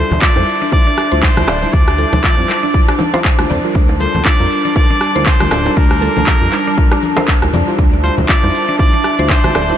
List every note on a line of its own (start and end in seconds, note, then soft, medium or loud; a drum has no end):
0.00 0.33 G3 medium
0.00 7.74 D4 medium
0.00 0.33 E4 medium
0.00 0.33 F4 medium
0.00 0.20 C5 loud
0.00 0.33 C5 medium
0.00 3.71 E5 medium
0.00 9.78 A5 medium
0.11 0.18 D2 medium
0.11 high conga medium
0.11 low conga loud
0.11 cabasa medium
0.22 0.35 F4 medium
0.22 0.69 D5 loud
0.22 kick loud
0.22 clap loud
0.22 muted conga medium
0.22 high conga medium
0.22 cabasa soft
0.36 0.44 F2 loud
0.36 0.70 G3 loud
0.36 0.70 E4 medium
0.36 0.70 F4 medium
0.36 0.70 C5 loud
0.36 low bongo medium
0.47 cabasa loud
0.62 0.72 D4 loud
0.62 muted conga soft
0.62 cabasa medium
0.72 0.88 G3 medium
0.72 0.88 E4 medium
0.72 0.88 F4 medium
0.72 0.88 C5 medium
0.72 1.24 D5 loud
0.72 kick loud
0.72 low bongo medium
0.72 cabasa soft
0.87 0.97 D4 loud
0.87 muted conga medium
0.98 cross-stick medium
0.98 cabasa loud
1.12 1.27 D2 loud
1.12 1.24 G3 medium
1.12 1.24 E4 medium
1.12 1.24 F4 medium
1.12 1.22 C5 loud
1.12 1.24 C5 medium
1.12 muted conga soft
1.12 cabasa medium
1.22 1.75 C5 loud
1.22 kick loud
1.22 clap loud
1.22 low bongo medium
1.22 cabasa soft
1.37 1.44 D2 loud
1.37 1.49 G3 loud
1.37 1.49 E4 medium
1.37 1.49 F4 medium
1.37 1.49 C5 loud
1.37 cross-stick loud
1.37 high conga loud
1.37 low conga medium
1.48 1.66 D1 medium
1.48 1.62 D5 medium
1.48 cross-stick loud
1.48 high bongo loud
1.48 muted conga medium
1.48 cabasa medium
1.62 1.96 G3 medium
1.62 1.96 E4 medium
1.62 1.96 F4 medium
1.62 1.96 C5 medium
1.62 low bongo medium
1.62 cabasa medium
1.73 2.05 D2 loud
1.73 1.86 D4 medium
1.73 3.24 D5 loud
1.73 kick loud
1.73 muted conga medium
1.73 cabasa soft
1.88 cross-stick medium
1.98 2.35 G3 medium
1.98 2.35 E4 medium
1.98 2.35 F4 medium
1.98 2.06 A4 medium
1.98 2.35 C5 medium
1.98 muted conga soft
1.98 cabasa loud
2.13 2.20 D2 medium
2.13 low bongo loud
2.13 high conga loud
2.13 low conga loud
2.13 cabasa medium
2.24 2.37 F4 medium
2.24 kick loud
2.24 clap loud
2.24 muted conga medium
2.24 high conga medium
2.24 cabasa soft
2.38 2.45 F2 loud
2.38 2.72 G3 loud
2.38 2.71 E4 medium
2.38 2.71 F4 medium
2.38 2.71 C5 loud
2.49 clap medium
2.49 low bongo medium
2.49 cabasa loud
2.63 2.74 D4 loud
2.63 muted conga soft
2.63 cabasa medium
2.74 2.90 G3 medium
2.74 2.90 E4 medium
2.74 2.90 F4 medium
2.74 2.90 C5 medium
2.74 kick loud
2.74 cabasa soft
2.89 2.98 D4 loud
2.89 cross-stick loud
2.89 muted conga soft
2.99 low bongo medium
2.99 high conga loud
2.99 cabasa loud
3.14 3.26 G3 medium
3.14 3.26 E4 medium
3.14 3.26 F4 medium
3.14 3.23 C5 loud
3.14 3.26 C5 medium
3.14 high bongo loud
3.14 muted conga soft
3.14 high conga medium
3.14 cabasa medium
3.25 kick loud
3.25 clap loud
3.25 cabasa soft
3.39 3.46 D2 medium
3.39 3.51 G3 loud
3.39 3.51 E4 medium
3.39 3.51 F4 medium
3.39 3.51 C5 loud
3.39 cross-stick medium
3.39 low bongo medium
3.50 3.59 F2 medium
3.50 3.63 D5 medium
3.50 muted conga soft
3.50 high conga loud
3.50 low conga loud
3.50 cabasa loud
3.64 3.98 G3 medium
3.64 3.98 F4 medium
3.64 3.98 A#4 loud
3.64 cabasa medium
3.74 4.07 D2 medium
3.74 7.74 G3 medium
3.74 3.88 D4 medium
3.74 kick loud
3.74 muted conga soft
3.74 cabasa soft
3.89 low bongo medium
4.00 4.36 G3 medium
4.00 4.36 F4 medium
4.00 4.08 A4 medium
4.00 4.36 A#4 medium
4.00 4.24 C5 loud
4.00 muted conga soft
4.00 cabasa loud
4.14 4.22 D2 medium
4.14 high conga loud
4.14 low conga medium
4.14 cabasa medium
4.25 4.38 F4 medium
4.25 4.72 D5 loud
4.25 kick loud
4.25 clap loud
4.25 low bongo medium
4.25 muted conga medium
4.25 high conga medium
4.25 cabasa soft
4.40 4.47 F2 loud
4.40 4.73 G3 loud
4.40 4.73 F4 medium
4.40 4.73 A#4 loud
4.50 cabasa loud
4.65 4.75 D4 loud
4.65 muted conga soft
4.65 cabasa medium
4.76 4.91 G3 medium
4.76 4.91 F4 medium
4.76 4.91 A#4 medium
4.76 5.28 D5 loud
4.76 kick loud
4.76 low bongo medium
4.76 cabasa soft
4.90 5.00 D4 loud
4.90 muted conga medium
5.01 cross-stick medium
5.01 cabasa loud
5.15 5.31 D2 loud
5.15 5.28 G3 medium
5.15 5.28 F4 medium
5.15 5.27 A#4 medium
5.15 5.25 C5 loud
5.15 low bongo medium
5.15 muted conga soft
5.15 cabasa medium
5.26 5.78 C5 loud
5.26 kick loud
5.26 clap loud
5.26 cabasa soft
5.40 5.48 D2 loud
5.40 5.53 G3 loud
5.40 5.53 F4 medium
5.40 5.53 A#4 loud
5.40 cross-stick loud
5.40 high conga loud
5.40 low conga medium
5.51 5.69 D1 medium
5.51 5.65 D5 medium
5.51 cross-stick loud
5.51 high bongo loud
5.51 muted conga medium
5.51 cabasa loud
5.65 5.99 G3 medium
5.65 5.99 F4 medium
5.65 5.99 A#4 medium
5.65 low bongo loud
5.65 cabasa medium
5.77 6.09 D2 loud
5.77 5.90 D4 medium
5.77 7.28 A#4 loud
5.77 kick loud
5.77 muted conga soft
5.77 cabasa soft
5.91 cross-stick medium
6.01 6.38 G3 medium
6.01 6.38 F4 medium
6.01 6.10 A4 medium
6.01 6.38 A#4 medium
6.01 low bongo medium
6.01 muted conga soft
6.01 cabasa medium
6.16 6.23 D2 medium
6.16 high conga loud
6.16 low conga medium
6.16 cabasa medium
6.27 6.40 F4 medium
6.27 kick loud
6.27 clap loud
6.27 muted conga soft
6.27 high conga medium
6.27 cabasa soft
6.41 6.49 F2 loud
6.41 6.75 G3 loud
6.41 6.75 F4 medium
6.41 6.75 A#4 loud
6.52 clap soft
6.52 low bongo medium
6.52 cabasa loud
6.67 6.77 D4 loud
6.67 muted conga soft
6.67 cabasa medium
6.77 6.93 G3 medium
6.77 6.93 F4 medium
6.77 6.93 A#4 medium
6.77 kick loud
6.77 cabasa soft
6.92 7.02 D4 loud
6.92 cross-stick medium
6.92 low bongo medium
6.92 muted conga medium
7.02 high conga loud
7.02 cabasa loud
7.17 7.29 G3 medium
7.17 7.29 F4 medium
7.17 7.29 A#4 medium
7.17 7.27 C5 loud
7.17 high bongo loud
7.17 muted conga soft
7.17 high conga medium
7.17 cabasa medium
7.28 kick loud
7.28 clap loud
7.28 cabasa soft
7.42 7.50 D2 medium
7.42 7.55 G3 medium
7.42 7.55 F4 medium
7.42 7.55 A#4 loud
7.42 cross-stick medium
7.42 low bongo medium
7.53 7.63 F2 medium
7.53 7.67 D5 medium
7.53 muted conga medium
7.53 high conga loud
7.53 low conga loud
7.53 cabasa loud
7.67 8.01 G3 medium
7.67 8.01 E4 medium
7.67 8.01 F4 medium
7.67 8.01 C5 medium
7.67 cabasa medium
7.78 8.10 D2 loud
7.78 7.92 D4 medium
7.78 9.78 D4 medium
7.78 9.78 E5 medium
7.78 kick loud
7.78 muted conga medium
7.78 cabasa soft
7.94 low bongo medium
8.03 8.40 G3 medium
8.03 8.40 E4 medium
8.03 8.40 F4 medium
8.03 8.17 F4 medium
8.03 8.40 C5 medium
8.03 8.15 C5 loud
8.03 muted conga soft
8.03 cabasa loud
8.18 8.25 D2 medium
8.18 high conga medium
8.18 low conga loud
8.18 cabasa medium
8.29 8.42 F4 medium
8.29 8.76 D5 loud
8.29 kick loud
8.29 clap loud
8.29 muted conga soft
8.29 high conga medium
8.29 cabasa soft
8.43 8.50 F2 loud
8.43 8.77 G3 loud
8.43 8.77 E4 medium
8.43 8.77 F4 medium
8.43 8.77 C5 loud
8.43 low bongo loud
8.54 cabasa loud
8.69 8.79 D4 loud
8.69 muted conga soft
8.69 cabasa medium
8.78 8.95 G3 medium
8.78 8.95 E4 medium
8.78 8.95 F4 medium
8.78 8.95 C5 medium
8.78 9.30 D5 loud
8.78 kick loud
8.78 low bongo medium
8.78 cabasa soft
8.93 9.03 D4 loud
8.93 muted conga soft
9.04 cross-stick medium
9.04 cabasa loud
9.19 9.34 D2 loud
9.19 9.31 G3 medium
9.19 9.31 E4 medium
9.19 9.31 F4 medium
9.19 9.31 C5 medium
9.19 9.29 C5 loud
9.19 muted conga soft
9.19 cabasa medium
9.29 9.78 C5 loud
9.29 kick loud
9.29 clap loud
9.29 low bongo medium
9.29 cabasa soft
9.44 9.51 D2 loud
9.44 9.56 G3 loud
9.44 9.56 E4 medium
9.44 9.56 F4 medium
9.44 9.56 C5 loud
9.44 cross-stick medium
9.44 high conga loud
9.44 low conga medium
9.55 9.73 D1 medium
9.55 9.69 D5 medium
9.55 cross-stick medium
9.55 high bongo loud
9.55 muted conga medium
9.55 cabasa medium
9.69 9.78 G3 medium
9.69 9.78 E4 medium
9.69 9.78 F4 medium
9.69 9.78 C5 medium
9.69 low bongo medium
9.69 cabasa medium